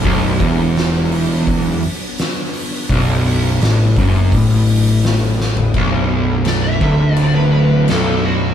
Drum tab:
CC |----------------|----------------|x---x---x---x---|
HH |o-o-o-o-o-o-o-o-|o-o-o-o-o-o-o---|----------------|
SD |----o-------o---|----o-------o-o-|----o-------o---|
FT |----------------|---------------o|----------------|
BD |o-o-----o-------|o-----o-o-------|o-----o---------|